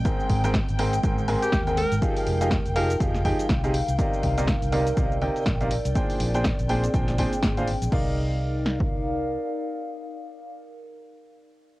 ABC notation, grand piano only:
X:1
M:4/4
L:1/16
Q:"Swing 16ths" 1/4=122
K:Cm
V:1 name="Grand piano"
[A,,CABg]3 [A,,CABg] z2 [A,,CABg] z [A,,CABg] z [A,,CABa] z2 [A,,CABg] z2 | [F,EGAf]3 [F,EGAf] z2 [F,EGAf] z [F,EGAf] z [F,EGAg] z2 [C,EGAf] z2 | [C,EBdf]3 [C,EBdf] z2 [C,EBdf] z [C,EBdf] z [C,EBdg] z2 [C,EBdf] z2 | [B,,DAcg]3 [B,,DAcg] z2 [B,,DAcg] z [B,,DAcg] z [B,,DAcg] z2 [B,,DAcf] z2 |
[EBdf]16- | [EBdf]16 |]